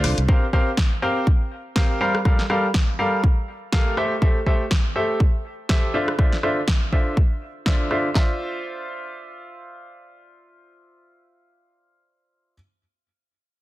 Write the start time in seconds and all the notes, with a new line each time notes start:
Already playing: D3 F4 C5 D5 F5
0.04 C2, cross-stick, open hi-hat
0.18 C2, closed hi-hat
0.29 C4 G4 A#4 C5 F5, kick
0.53 C4 G4 A#4 C5 F5, kick
0.77 kick, snare
1.02 C4 G4 A#4 C5 F5
1.27 kick
1.76 C4 G4 A#4 C5 F5, kick, snare
2.01 G3 G4 A#4 C5 F5
2.15 cross-stick
2.25 G3 G4 A4 A#4 F5, kick, cross-stick
2.39 snare
2.50 G3 G4 A4 A#4 F5, cross-stick
2.74 kick, snare
2.99 G3 G4 A4 A#4 F5
3.24 kick
3.72 A3 G4 A4 A#4 F5, kick, snare
3.97 A3 G4 A4 C5 E5, cross-stick
4.22 A3 G4 A4 C5 E5, kick
4.46 A3 G4 A4 C5 E5, kick
4.71 kick, snare
4.96 A3 G4 A4 C5 E5
5.20 kick
5.69 G4 A4 C5 E5, kick, snare
5.94 D3 F4 C5 D5 E5
6.08 cross-stick
6.19 D3 F4 C5 D5 E5, kick, cross-stick
6.32 snare
6.43 D3 F4 C5 D5 E5, cross-stick
6.68 kick, snare
6.92 D3 F4 C5 D5 E5, kick
7.17 kick
7.66 D3 F4 C5 D5 E5, kick, snare
7.91 D3 F4 C5 D5 E5, cross-stick
8.15 F4 C5 D5 E5, kick, snare, clap